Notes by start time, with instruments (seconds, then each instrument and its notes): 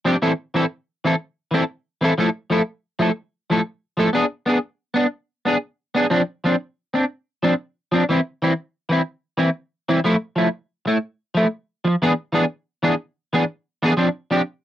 0.05 clean electric guitar F3 C4 D4 G4
0.22 clean electric guitar E3 C4 E4 A4
0.54 clean electric guitar E3 C4 E4 A4
1.04 clean electric guitar E3 C4 E4 A4
1.51 clean electric guitar E3 C4 E4 A4
2.01 clean electric guitar E3 C4 E4 A4
2.18 clean electric guitar F3 A3 E4 A4
2.50 clean electric guitar F3 A3 E4 A4
2.99 clean electric guitar F3 A3 E4 A4
3.50 clean electric guitar F3 A3 E4 A4
3.97 clean electric guitar F3 A3 E4 A4
4.13 clean electric guitar B3 D4 G#4
4.46 clean electric guitar B3 D4 G#4
4.94 clean electric guitar B3 D4, muted clean electric guitar stroke
5.45 clean electric guitar B3 D4 G#4
5.95 clean electric guitar B3 D4 G#4
6.10 clean electric guitar F3 C4 D4
6.44 clean electric guitar F3 C4 D4
6.94 clean electric guitar C4 D4
7.43 clean electric guitar F3 C4 D4
7.92 clean electric guitar F3 C4 D4
8.09 clean electric guitar E3 C4 E4
8.42 clean electric guitar E3 C4 E4
8.89 clean electric guitar E3 C4 E4
9.37 clean electric guitar E3 C4 E4
9.89 clean electric guitar E3 C4 E4
10.04 clean electric guitar F3 A3 E4
10.36 clean electric guitar F3 A3 E4
10.86 clean electric guitar A3 E4, muted clean electric guitar stroke
11.35 clean electric guitar F3 A3 E4
11.84 clean electric guitar F3, muted clean electric guitar stroke
12.02 clean electric guitar E3 B3 D4 G#4
12.32 clean electric guitar E3 B3 D4 G#4
12.83 clean electric guitar E3 B3 D4 G#4
13.33 clean electric guitar E3 B3 D4 G#4
13.82 clean electric guitar E3 B3 D4 G#4
13.97 clean electric guitar F3 C4 D4, muted clean electric guitar stroke
14.31 clean electric guitar F3 C4 D4 G4